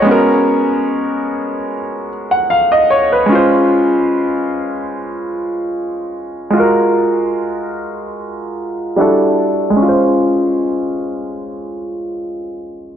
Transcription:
Already playing: C#5
0.02 G#3 B3
0.07 C#4 F#4
0.11 A#4
2.31 F#5
2.50 F5
2.72 D#5
2.90 C#5
3.12 B4
3.26 G#3 C#4
3.32 F4 C5
6.50 G#3 F4
6.57 F#4 A#4
8.96 G3 D4 E4 F#4
9.01 A4
9.70 G#3
9.76 C#4
9.83 F4
9.89 C5

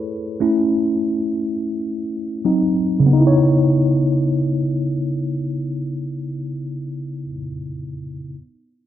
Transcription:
Already playing: A3 E4 G#4 B4 C#5
0.40 A3 C#4 E4
2.45 F#3 C4 D#4
3.00 C#3
3.06 B3
3.13 D#4
3.20 E4
3.27 C#5

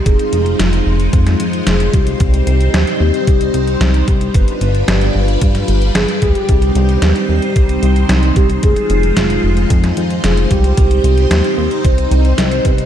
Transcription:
Already playing: D#4
0.06 F1 G#3 F4 G#4 C5, kick, closed hi-hat
0.19 closed hi-hat
0.33 F1, closed hi-hat
0.46 closed hi-hat
0.59 F1 F4, snare, closed hi-hat
0.73 closed hi-hat
0.86 F1
1.00 closed hi-hat
1.13 F2, kick, closed hi-hat
1.27 snare, closed hi-hat
1.40 F2, closed hi-hat
1.53 closed hi-hat
1.67 F1 G#4, snare, closed hi-hat
1.80 closed hi-hat
1.93 C2 G4, kick, closed hi-hat
2.07 closed hi-hat
2.20 C2 G3 C4 D#4, kick, closed hi-hat
2.34 closed hi-hat
2.47 C2, closed hi-hat
2.61 closed hi-hat
2.74 D#2, snare, closed hi-hat
2.87 closed hi-hat
3.00 D#2 G4
3.14 closed hi-hat
3.27 C2, kick, closed hi-hat
3.41 closed hi-hat
3.54 C2, closed hi-hat
3.67 closed hi-hat
3.81 C2 D#4, snare, closed hi-hat
3.94 closed hi-hat
4.08 C2 G4, kick, closed hi-hat
4.21 closed hi-hat
4.34 G1 D4 F4 B4, kick, closed hi-hat
4.48 closed hi-hat
4.61 G1, closed hi-hat
4.75 closed hi-hat
4.88 G1 G4, snare, closed hi-hat
5.01 closed hi-hat
5.15 G1
5.28 closed hi-hat
5.41 G2, kick, closed hi-hat
5.55 snare, closed hi-hat
5.68 G1, closed hi-hat
5.82 closed hi-hat
5.95 G1 G#4, snare, closed hi-hat
6.08 closed hi-hat
6.22 D2 G4, kick, closed hi-hat
6.35 closed hi-hat
6.48 C2 C4 D#4 C5, kick, closed hi-hat
6.62 closed hi-hat
6.75 C2, closed hi-hat
6.89 closed hi-hat
7.02 D#2, snare, closed hi-hat
7.16 closed hi-hat
7.29 D#2 G4
7.42 closed hi-hat
7.56 C2, kick, closed hi-hat
7.69 closed hi-hat
7.83 C2, closed hi-hat
7.96 closed hi-hat
8.09 C2 D#4, snare, closed hi-hat
8.23 closed hi-hat
8.36 C2 G4, kick, closed hi-hat
8.50 closed hi-hat
8.63 F1 G#3 F4 G#4 C5, kick, closed hi-hat
8.76 closed hi-hat
8.90 F1, closed hi-hat
9.03 closed hi-hat
9.17 F1 F4, snare, closed hi-hat
9.30 closed hi-hat
9.44 F1
9.57 closed hi-hat
9.70 F2, kick, closed hi-hat
9.84 snare, closed hi-hat
9.97 F2, closed hi-hat
10.10 closed hi-hat
10.23 F1 G#4, snare, closed hi-hat
10.37 closed hi-hat
10.50 C2 G4, kick, closed hi-hat
10.64 closed hi-hat
10.77 C2 G3 C4 D#4, kick, closed hi-hat
10.91 closed hi-hat
11.04 C2, closed hi-hat
11.18 closed hi-hat
11.31 D#2, snare, closed hi-hat
11.44 closed hi-hat
11.58 D#2 G4
11.71 closed hi-hat
11.84 C2 C5, kick, closed hi-hat
11.98 closed hi-hat
12.11 C2, closed hi-hat
12.25 closed hi-hat
12.38 C2, snare, closed hi-hat
12.52 closed hi-hat
12.65 C2 B4, kick, closed hi-hat
12.78 closed hi-hat

